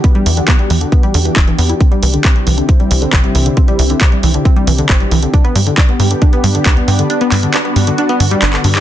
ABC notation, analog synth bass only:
X:1
M:4/4
L:1/8
Q:1/4=136
K:Clyd
V:1 name="Analog synth bass" clef=bass
z E,, z E,, z E,, E,,, E,, | z C,, z C,, z C,, G,,, C,, | z C,, z C,, z C,, G,,, C,, | z G,, z G,, z G,, D,, G,, |
z G,, z G,, z G,, G,,, G,, |]